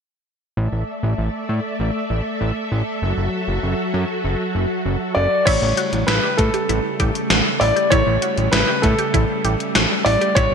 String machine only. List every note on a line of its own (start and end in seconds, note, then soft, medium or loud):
0.57 2.99 A3 medium
0.57 5.43 A4 medium
0.57 2.99 D5 medium
0.57 5.43 E5 medium
3.02 5.44 F#3 medium
3.02 5.44 F#4 medium
5.47 10.33 C#3 medium
5.47 10.54 G3 medium
5.47 10.33 A3 medium
10.36 10.54 D3 medium
10.36 10.54 B3 medium